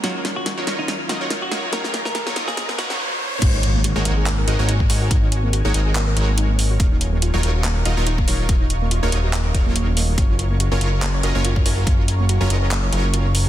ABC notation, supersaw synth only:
X:1
M:4/4
L:1/16
Q:"Swing 16ths" 1/4=142
K:Ebdor
V:1 name="Supersaw synth"
[G,EFBd]4- [G,EFBd] [G,EFBd] [G,EFBd]4 [G,EFBe] [G,EFBd] z2 [G,EFBd]2 | [G,EFBd]4- [G,EFBd] [G,EFBd] [G,EFBe]4 [G,EFBd] [G,EFBd] z4 | [A,EGBd]4- [A,EGBd] [A,EGBd] [A,EGBd]4 [A,EGBe] [A,EGBd] z2 [A,EGBd]2 | [A,EGBd]4- [A,EGBd] [A,EGBd] [A,EGBe]4 [A,EGBd]6 |
[G,EFBd]4- [G,EFBd] [G,EFBd] [G,EFBd]4 [G,EFBe] [G,EFBd] z2 [G,EFBd]2 | z4 z [G,EFBd] [G,EFBe]4 [G,EFBd] [G,EFBd]4- [G,EFBd] | [G,DFBd]4- [G,DFBd] [G,DFBd] [G,DFBd]4 [G,DFBe] [G,DFBd] z2 [G,DFBd]2 | [G,DFBd]4- [G,DFBd] [G,DFBd] [G,DFBe]4 [G,DFBd]6 |]